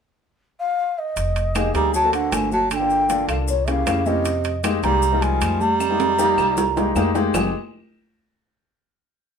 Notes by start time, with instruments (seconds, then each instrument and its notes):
0.60 bansuri F5
0.98 bansuri D#5
1.16 upright bass F1, high conga, high timbale, maracas
1.36 high conga, high timbale, maracas
1.55 grand piano A#3 D#4 G4 G#4, high conga, high timbale, claves, maracas
1.74 upright bass D2, baritone saxophone G3, grand piano A#3 D#4 G4 G#4, bansuri A#5, high conga, high timbale, maracas
1.94 baritone saxophone F#3, bansuri A5, high conga, maracas
2.03 grand piano A#3 C4 F#4 A4
2.13 baritone saxophone D3, bansuri F#5, high conga, high timbale, maracas
2.32 upright bass G1, baritone saxophone D3, bansuri G#5, high conga, high timbale, low timbale, claves, maracas
2.52 baritone saxophone F#3, bansuri A5, high conga, maracas
2.71 baritone saxophone D3, bansuri G#5, high conga, high timbale, claves, maracas
2.76 bansuri G5
2.80 grand piano A#3 D4 F4 A4
2.90 high conga, maracas
3.09 grand piano A#3 D4 F4 A4, high conga, high timbale, maracas
3.28 upright bass C2, baritone saxophone D3, bansuri F5, high conga, high timbale, claves, maracas
3.48 baritone saxophone A#2, bansuri C#5, high conga, maracas
3.67 baritone saxophone C#3, grand piano A#3 C#4 E4 G4, bansuri F5, high conga, high timbale, maracas
3.87 upright bass F2, grand piano A#3 C#4 E4 G4, high conga, high timbale, low timbale, claves, maracas
4.06 baritone saxophone C3, grand piano A#3 C#4 E4 G4, bansuri D#5, high conga, maracas
4.25 high conga, high timbale, maracas
4.44 high conga, high timbale, maracas
4.63 grand piano G#3 A#3 D#4 G4, high conga, high timbale, claves, maracas
4.83 upright bass C2, baritone saxophone G3, grand piano G#3 A#3 D#4 G4, bansuri A#5, high timbale, maracas
5.02 high conga, maracas
5.12 grand piano G3 G#3 A#3 D#4
5.22 baritone saxophone F3, bansuri G#5, high conga, high timbale, maracas
5.41 upright bass F2, high conga, high timbale, claves, maracas
5.61 baritone saxophone G3, bansuri A#5, high conga, maracas
5.80 high conga, high timbale, claves, maracas
5.90 grand piano G#3 A#3 D#4 G4
6.00 high conga, high timbale, maracas
6.18 grand piano G3 A#3 D#4 G4, high conga, maracas
6.37 upright bass C2, high conga, low timbale, claves, maracas
6.57 high conga, low timbale, maracas
6.76 grand piano G#3 A#3 D#4 G4, high conga, low timbale, maracas
6.95 upright bass F2, grand piano G#3 A#3 D#4 G4, high conga, low timbale, claves, maracas
7.14 grand piano G#3 A#3 D#4 G4, high conga, low timbale, maracas
7.33 upright bass F1, baritone saxophone F2, grand piano G#3 A#3 D#4 G4, bansuri G#5, low conga, low timbale, claves, maracas